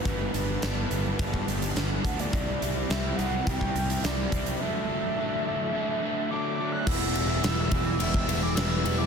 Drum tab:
CC |----------------|----------------|----------------|x---------------|
RD |----------------|----------------|----------------|--x-x-x-x-x-x-x-|
HH |x-x-x-x-x-xxx-xx|x-x-x-x-x-xxx-xx|----------------|----------------|
SD |----o-------o---|----o-------o---|----------------|----o-------o---|
BD |o-------oo----o-|o-------oo----o-|----------------|o-----o--o------|